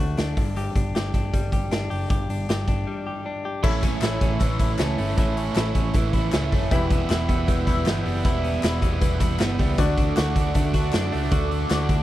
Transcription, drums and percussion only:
0.17 snare, closed hi-hat
0.37 kick, open hi-hat
0.56 closed hi-hat
0.76 kick, closed hi-hat
0.95 snare, closed hi-hat
1.14 kick, closed hi-hat
1.34 kick, closed hi-hat
1.52 kick, closed hi-hat
1.71 snare, closed hi-hat
1.91 open hi-hat
2.10 kick, closed hi-hat
2.30 closed hi-hat
2.49 snare, closed hi-hat
2.68 kick, closed hi-hat
3.63 kick, crash
3.83 kick, closed hi-hat
4.02 snare, clap, closed hi-hat
4.21 kick, closed hi-hat
4.40 kick, closed hi-hat
4.59 kick, closed hi-hat
4.78 snare, clap, closed hi-hat
4.98 open hi-hat
5.18 kick, closed hi-hat
5.37 closed hi-hat
5.55 snare, clap, closed hi-hat
5.75 kick, closed hi-hat
5.94 kick, closed hi-hat
6.13 kick, closed hi-hat
6.32 snare, clap, closed hi-hat
6.52 kick, open hi-hat
6.71 kick, closed hi-hat
6.90 kick, closed hi-hat
7.10 snare, clap, closed hi-hat
7.29 kick, closed hi-hat
7.48 kick, closed hi-hat
7.67 kick, closed hi-hat
7.86 snare, clap, closed hi-hat
8.06 open hi-hat
8.25 kick, closed hi-hat
8.44 closed hi-hat
8.63 snare, clap, closed hi-hat
8.82 kick, closed hi-hat
9.01 kick, closed hi-hat
9.20 kick, clap, closed hi-hat
9.40 snare, clap, closed hi-hat
9.59 kick, open hi-hat
9.78 kick, closed hi-hat
9.98 kick, closed hi-hat
10.16 snare, clap, closed hi-hat
10.36 kick, closed hi-hat
10.54 kick, closed hi-hat
10.74 kick, closed hi-hat
10.93 snare, clap, closed hi-hat
11.12 open hi-hat
11.32 kick, closed hi-hat
11.51 closed hi-hat
11.70 snare, clap, closed hi-hat
11.89 kick, closed hi-hat

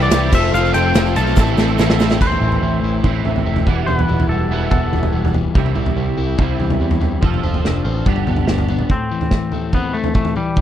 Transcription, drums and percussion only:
0.01 shaker
0.11 snare, ride, shaker
0.32 kick, crash, shaker
0.54 shaker
0.65 shaker
0.74 ride, shaker
0.95 snare, ride, shaker
1.06 shaker
1.16 ride, shaker
1.26 snare, shaker
1.36 kick, snare, shaker
1.57 snare, shaker
1.68 shaker
1.78 snare, shaker
1.90 snare
1.99 snare, shaker
2.09 snare, shaker
2.21 kick, floor tom, crash
2.32 floor tom
2.42 mid tom
2.52 floor tom
3.04 kick, floor tom
3.25 floor tom
3.36 floor tom
3.56 floor tom
3.67 kick, floor tom
3.88 floor tom
3.99 floor tom
4.09 mid tom
4.20 floor tom
4.71 kick, floor tom
4.93 floor tom
5.03 floor tom
5.25 floor tom
5.34 floor tom
5.55 kick, floor tom
5.66 floor tom
5.76 mid tom
5.86 floor tom
6.38 kick, floor tom
6.60 floor tom
6.70 floor tom
6.91 floor tom
7.01 floor tom
7.22 kick, floor tom
7.34 floor tom
7.43 floor tom
7.54 floor tom
7.65 snare
8.06 kick, floor tom
8.16 floor tom
8.27 floor tom, mid tom
8.36 floor tom
8.47 snare
8.58 floor tom
8.69 floor tom
8.79 mid tom
8.90 kick, floor tom
9.21 floor tom
9.31 kick, snare
9.52 floor tom
9.73 kick, floor tom
10.04 floor tom
10.14 kick, mid tom
10.25 floor tom
10.36 mid tom
10.56 kick, floor tom

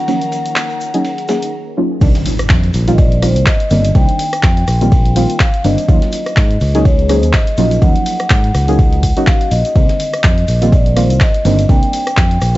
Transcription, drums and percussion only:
0.08 ride, shaker
0.21 closed hi-hat, shaker
0.32 ride, shaker
0.46 closed hi-hat, shaker
0.56 clap, ride, shaker
0.69 shaker
0.81 shaker
0.94 closed hi-hat, shaker
1.05 ride, shaker
1.18 closed hi-hat, ride, shaker
1.28 snare, ride, shaker
1.42 closed hi-hat, shaker
2.01 kick, crash, ride, shaker
2.15 snare, closed hi-hat
2.26 open hi-hat, ride, shaker
2.39 cross-stick, closed hi-hat, shaker
2.49 kick, snare, clap, ride, shaker
2.63 closed hi-hat
2.74 open hi-hat, ride, shaker
2.88 closed hi-hat, ride, shaker
2.98 kick, ride, shaker
3.12 closed hi-hat
3.22 cross-stick, open hi-hat, ride, shaker
3.36 closed hi-hat, shaker
3.46 kick, snare, clap, ride, shaker
3.60 closed hi-hat
3.70 open hi-hat, ride, shaker
3.84 closed hi-hat, ride, shaker
3.95 kick, ride, shaker
4.09 closed hi-hat
4.19 open hi-hat, ride, shaker
4.33 cross-stick, closed hi-hat, shaker
4.43 kick, snare, clap, ride, shaker
4.57 closed hi-hat
4.67 cross-stick, open hi-hat, ride, shaker
4.81 closed hi-hat, shaker
4.92 kick, ride, shaker
5.05 closed hi-hat, ride
5.16 open hi-hat, ride, shaker
5.30 closed hi-hat, shaker
5.40 kick, snare, clap, ride, shaker
5.54 closed hi-hat
5.64 open hi-hat, ride, shaker
5.78 closed hi-hat, shaker
5.88 kick, ride, shaker
6.02 snare, closed hi-hat
6.12 open hi-hat, ride, shaker
6.26 cross-stick, closed hi-hat, shaker
6.36 kick, snare, clap, ride, shaker
6.51 closed hi-hat
6.60 open hi-hat, ride, shaker
6.75 closed hi-hat, ride, shaker
6.85 kick, ride, shaker
6.99 closed hi-hat
7.09 cross-stick, open hi-hat, ride, shaker
7.23 closed hi-hat, shaker
7.33 kick, snare, clap, ride, shaker
7.47 closed hi-hat
7.57 open hi-hat, ride, shaker
7.71 closed hi-hat, ride, shaker
7.82 kick, ride, shaker
7.96 closed hi-hat
8.06 open hi-hat, ride, shaker
8.19 cross-stick, closed hi-hat, shaker
8.30 kick, snare, clap, ride, shaker
8.44 closed hi-hat
8.55 cross-stick, open hi-hat, ride, shaker
8.68 closed hi-hat, shaker
8.78 kick, ride, shaker
8.92 closed hi-hat, ride
9.03 kick, open hi-hat, ride, shaker
9.16 closed hi-hat, shaker
9.27 kick, snare, clap, ride, shaker
9.41 closed hi-hat
9.51 open hi-hat, ride, shaker
9.65 closed hi-hat, shaker
9.76 kick, ride, shaker
9.89 snare, closed hi-hat
10.00 open hi-hat, ride, shaker
10.13 cross-stick, closed hi-hat, shaker
10.24 kick, snare, clap, ride, shaker
10.38 closed hi-hat
10.48 open hi-hat, ride, shaker
10.62 closed hi-hat, ride, shaker
10.72 kick, ride, shaker
10.86 closed hi-hat
10.97 cross-stick, open hi-hat, ride, shaker
11.10 closed hi-hat, shaker
11.20 kick, snare, clap, ride, shaker
11.34 closed hi-hat
11.45 open hi-hat, ride, shaker
11.59 closed hi-hat, ride, shaker
11.69 kick, ride, shaker
11.83 closed hi-hat
11.93 open hi-hat, ride, shaker
12.07 cross-stick, closed hi-hat, shaker
12.17 kick, snare, clap, ride, shaker
12.31 closed hi-hat
12.41 cross-stick, open hi-hat, ride, shaker

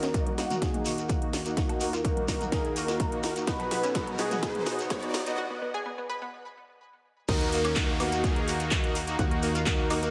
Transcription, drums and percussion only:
0.03 snare, closed hi-hat, shekere
0.14 kick, closed hi-hat, shekere
0.26 closed hi-hat, high conga
0.38 snare, open hi-hat, shekere
0.50 closed hi-hat, mid tom, shekere
0.62 kick, snare, closed hi-hat, shekere
0.74 closed hi-hat, mid tom
0.85 open hi-hat, shekere
0.98 closed hi-hat, shekere
1.09 kick, closed hi-hat, shekere
1.22 closed hi-hat
1.33 snare, open hi-hat, shekere
1.45 closed hi-hat, shekere
1.57 kick, snare, closed hi-hat, shekere
1.69 closed hi-hat, high woodblock
1.80 open hi-hat, shekere
1.93 closed hi-hat, shekere
2.04 kick, closed hi-hat, shekere
2.17 closed hi-hat, high conga
2.28 kick, snare, open hi-hat, shekere
2.41 closed hi-hat, mid tom, shekere
2.52 kick, snare, closed hi-hat, shekere
2.65 closed hi-hat
2.76 open hi-hat, shekere
2.88 snare, closed hi-hat, shekere
3.00 kick, closed hi-hat, shekere
3.12 closed hi-hat
3.23 snare, open hi-hat, shekere
3.36 closed hi-hat, shekere
3.47 kick, snare, closed hi-hat, shekere
3.60 closed hi-hat, high woodblock
3.71 snare, open hi-hat, shekere
3.83 closed hi-hat, shekere
3.95 kick, snare, closed hi-hat, shekere
4.07 closed hi-hat, high conga
4.18 snare, open hi-hat, shekere
4.31 closed hi-hat, mid tom, shekere
4.43 kick, snare, closed hi-hat, shekere
4.55 closed hi-hat, mid tom
4.66 snare, open hi-hat, shekere
4.79 closed hi-hat, shekere
4.90 kick, snare, closed hi-hat, shekere
5.03 closed hi-hat
5.14 snare, open hi-hat, shekere
5.26 closed hi-hat, shekere
7.28 kick, closed hi-hat, crash, shekere
7.41 closed hi-hat
7.52 open hi-hat, shekere
7.65 closed hi-hat, high woodblock, shekere
7.76 kick, clap, closed hi-hat, shekere
8.00 open hi-hat, high woodblock, shekere
8.12 closed hi-hat, shekere
8.24 kick, closed hi-hat, shekere
8.36 closed hi-hat
8.48 open hi-hat, shekere
8.60 closed hi-hat, shekere
8.71 kick, clap, closed hi-hat, shekere
8.84 closed hi-hat
8.95 open hi-hat, shekere
9.08 closed hi-hat, shekere
9.19 kick, closed hi-hat, shekere
9.31 closed hi-hat
9.43 open hi-hat, shekere
9.55 closed hi-hat, shekere
9.66 kick, clap, closed hi-hat, shekere
9.90 open hi-hat, high woodblock, shekere
10.03 closed hi-hat, shekere

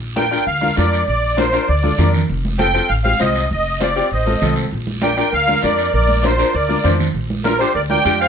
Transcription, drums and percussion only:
0.17 high conga, short guiro
0.32 short guiro
0.47 high conga, long guiro
0.62 high conga
0.77 high conga, short guiro
0.93 short guiro
1.08 high conga, long guiro
1.38 high conga, short guiro
1.52 short guiro
1.68 high conga, long guiro
1.84 high conga
1.99 high conga, low conga, short guiro
2.14 low conga, short guiro
2.28 high conga, long guiro
2.45 high conga
2.59 high conga, short guiro
2.74 short guiro
2.89 high conga, long guiro
3.05 high conga
3.20 high conga, short guiro
3.35 short guiro
3.51 high conga, long guiro
3.81 high conga, short guiro
3.96 short guiro
4.11 high conga, long guiro
4.27 high conga
4.42 high conga, low conga, short guiro
4.56 short guiro
4.71 high conga, long guiro
4.87 high conga
5.02 high conga, short guiro
5.17 short guiro
5.32 high conga, long guiro
5.49 high conga
5.63 high conga, short guiro
5.78 short guiro
5.93 high conga, long guiro
6.09 high conga
6.24 high conga, short guiro
6.40 short guiro
6.55 high conga, long guiro
6.70 high conga
6.85 high conga, low conga, short guiro
7.00 low conga, short guiro
7.15 high conga, long guiro
7.30 high conga
7.44 high conga, short guiro
7.60 short guiro
7.75 high conga, long guiro
7.90 high conga
8.05 high conga, short guiro
8.21 short guiro

